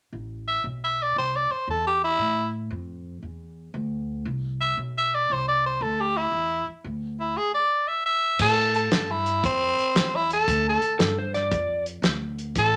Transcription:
0.13 A1
0.48 E5
0.64 B1
0.84 E5
1.02 D5
1.16 C2 C5
1.36 D5
1.50 C5, muted upright bass stroke
1.67 E2 A4
1.87 G4
2.04 E4
2.18 A2
2.70 F2
3.22 E2
3.74 D2
4.25 C2
4.61 E5
4.77 B1
4.98 E5
5.14 D5
5.30 C2 C5
5.48 D5
5.66 C5
5.81 D2 A4
6.00 G4
6.17 E4
6.32 E2
6.67 muted upright bass stroke
6.84 D2
7.20 E4
7.37 G#4
7.54 D5
7.88 E5
8.06 E5
8.39 A2 A4, kick, crash
8.74 A4, closed hi-hat
8.91 G2, snare, closed hi-hat
9.11 E4
9.26 closed hi-hat
9.44 F2 C4, kick, closed hi-hat
9.78 muted upright bass stroke, closed hi-hat
9.95 E2, snare, closed hi-hat
10.15 E4
10.30 A4, closed hi-hat
10.47 D2, kick, closed hi-hat
10.69 A4
10.82 muted upright bass stroke, closed hi-hat
10.99 G2 A4, snare, closed hi-hat
11.19 C5
11.34 D5, snare, closed hi-hat
11.51 F2, kick, closed hi-hat
11.86 closed hi-hat
12.02 D2, snare, closed hi-hat
12.38 closed hi-hat
12.55 A1 A4, kick, closed hi-hat

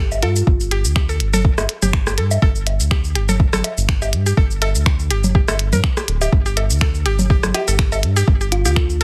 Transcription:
Already playing: G1 G4
0.12 low woodblock, shaker
0.23 G2 F4 A4, closed hi-hat
0.36 shaker
0.47 G1, kick
0.60 shaker
0.71 G4, closed hi-hat
0.85 D2, shaker
0.96 G4, finger snap, kick
1.09 A4, shaker
1.20 G1, closed hi-hat
1.33 A4, low conga, shaker
1.45 kick
1.58 G1, cross-stick, low woodblock, shaker
1.69 closed hi-hat
1.82 G1 G4, low conga, shaker
1.93 finger snap, kick
2.07 G4, cross-stick, shaker
2.18 G2 A4, closed hi-hat
2.31 low woodblock, shaker
2.42 G1 A4, kick
2.56 shaker
2.67 closed hi-hat, low woodblock
2.80 D2, shaker
2.91 G4, finger snap, kick
3.04 shaker
3.15 G1 G4, closed hi-hat
3.29 A4, low conga, shaker
3.40 kick
3.53 G1 A4, cross-stick, low conga, shaker
3.64 closed hi-hat, low woodblock
3.77 G1, shaker
3.89 finger snap, kick
4.02 G4, low woodblock, shaker
4.13 G2, closed hi-hat
4.26 G4, shaker
4.37 G1 A4, kick
4.51 shaker
4.62 A4, closed hi-hat, low woodblock
4.75 D2, shaker
4.86 finger snap, kick
4.99 shaker
5.10 G1 G4, closed hi-hat
5.24 low conga, shaker
5.35 G4, kick
5.48 G1 A4, cross-stick, low woodblock, shaker
5.59 closed hi-hat
5.73 G2 A#4, low conga, shaker
5.84 finger snap, kick
5.97 G4, cross-stick, shaker
6.08 D1, closed hi-hat
6.21 G4, low woodblock, shaker
6.32 G1, kick
6.46 G4, shaker
6.57 A4, closed hi-hat, low woodblock
6.70 D2, shaker
6.81 A4, finger snap, kick
6.95 shaker
7.06 G1 G4, closed hi-hat
7.19 low conga, shaker
7.30 G4, kick
7.43 G1, cross-stick, low conga, shaker
7.54 G4, closed hi-hat, low woodblock
7.68 G1 A4, shaker
7.79 finger snap, kick
7.92 A4, low woodblock, shaker
8.03 G2, closed hi-hat
8.16 G4, shaker
8.28 G1, kick
8.41 G4, shaker
8.52 F4, closed hi-hat
8.65 D2 F4 G4, shaker
8.76 A4, finger snap, kick
8.90 shaker

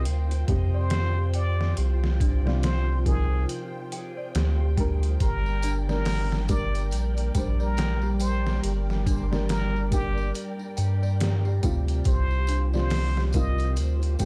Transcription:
Already playing: D4 F4 G4 A#4 C5 D5 G5
0.05 D2, closed hi-hat
0.31 closed hi-hat
0.47 F2 C3 G3 G4 G5, kick, closed hi-hat
0.74 C5 D5
0.90 G4, snare, closed hi-hat
1.18 G4
1.34 D5 G5, closed hi-hat
1.61 snare
1.77 C2 G4, closed hi-hat
2.04 snare
2.20 D4, kick, closed hi-hat
2.45 C3 G3 F4 D5, snare
2.63 C5, snare, closed hi-hat
3.05 C3 F3 D#4 G#4 A#4, kick, closed hi-hat
3.49 closed hi-hat
3.92 G5, closed hi-hat
4.17 D5
4.35 D2 G4, snare, closed hi-hat
4.60 G4
4.77 G3 D4 A#4 G5, kick, closed hi-hat
5.03 closed hi-hat
5.20 G1 G3 G4 A#4 D5, kick, closed hi-hat, tambourine
5.46 tambourine
5.62 D4, closed hi-hat, tambourine
5.88 G3 D4 A#4 D5, snare, tambourine
6.05 snare, open hi-hat, tambourine
6.31 snare, tambourine
6.48 G3 D4 A#4 D5, kick, closed hi-hat, tambourine
6.75 closed hi-hat, tambourine
6.91 A#1, closed hi-hat, tambourine
7.17 closed hi-hat, tambourine
7.35 A#1 G3 D4 C5 G5, kick, closed hi-hat, tambourine
7.60 A#4 D5, tambourine
7.77 G4, snare, closed hi-hat, tambourine
8.01 G4, tambourine
8.19 C5 G5, closed hi-hat, tambourine
8.46 snare, tambourine
8.63 G1 G4, closed hi-hat, tambourine
8.90 snare, tambourine
9.06 D4, kick, closed hi-hat, tambourine
9.31 G3 D4 A#4 D5, snare, tambourine
9.49 A#4, snare, closed hi-hat, tambourine
9.76 tambourine
9.91 G3 D4 G4 A#4, kick, closed hi-hat, tambourine
10.18 tambourine
10.34 closed hi-hat, tambourine
10.59 tambourine
10.77 G2 G5, closed hi-hat, tambourine
11.03 D5, tambourine
11.20 G4, snare, closed hi-hat, tambourine
11.45 G4, tambourine
11.63 D2 C3 G3 F4 G5, kick, closed hi-hat, tambourine
11.88 closed hi-hat, tambourine
12.04 C2 F4 G4 C5, kick, closed hi-hat, tambourine
12.31 tambourine
12.47 D4, closed hi-hat, tambourine
12.73 C3 G3 F4 C5 D5, snare, tambourine
12.90 snare, open hi-hat, tambourine
13.17 snare, tambourine
13.33 C3 G3 F4 A#4 D#5, kick, closed hi-hat, tambourine
13.58 closed hi-hat, tambourine
13.76 D2, closed hi-hat, tambourine
14.02 closed hi-hat, tambourine
14.19 F2 C3 G3 G4 G5, kick, closed hi-hat, tambourine

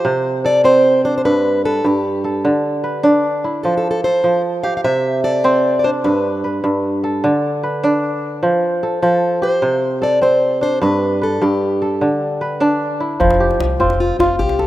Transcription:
Already playing: F3 G4 A4 C5
0.05 C3
0.44 A4 D5
0.64 C4 C5
1.05 D4 C5
1.18 C5
1.25 G2 B4
1.65 A4 B4
1.84 G2 G4
2.24 A4
2.45 D3
2.84 B4
3.04 D4
3.44 E4
3.63 F3 A4
3.78 A4
3.91 A4
4.04 A4 C5
4.24 F3
4.64 G4 F5
4.77 F5
4.84 C3 E5
5.24 A4 D5
5.44 C4
5.79 D5
5.84 D4 C5
6.04 G2 B4
6.44 B4
6.64 G2
7.04 A4
7.24 D3
7.63 B4
7.84 D4
8.43 F3
8.83 A4
9.02 F3 A4
9.42 G4 C5
9.62 C3
10.02 A4 D5
10.22 C4 C5
10.61 D4 C5
10.81 G2 B4
11.22 A4 B4
11.42 G2 G4
11.82 A4
12.01 D3
12.41 B4
12.61 D4
13.00 E4
13.20 F1 F3, djembe tone, djembe bass
13.30 djembe slap
13.40 G4
13.51 djembe tone
13.60 C2, djembe slap
13.70 djembe slap
13.80 F1 C4 F4, djembe bass
13.90 djembe slap, djembe tone
14.00 F4
14.19 F1 F4, djembe slap, djembe tone
14.39 C2 G4, djembe slap, djembe bass
14.49 djembe slap
14.59 A4, djembe slap, djembe tone

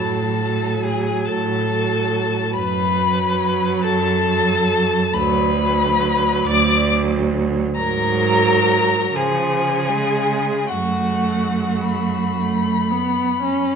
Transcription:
Already playing: A2 F#3 A4 A5
0.40 F#3
0.83 G#4 G#5
1.25 A2 A4 A5
1.71 F#3
2.54 F#2 B4 B5
2.99 F#3
3.83 F#2 A4 A5
4.27 F#3
5.14 D2 F#3 B4 B5
5.58 F#3
6.45 D2 D5 D6
6.89 F#3
7.76 G#2 F#3 A#4 A#5
9.15 C#3 F3 G#4 G#5
9.89 G#3
10.69 F#2 A3 F#4 F#5
11.84 B5
12.37 A3
12.91 B3
13.42 C#4

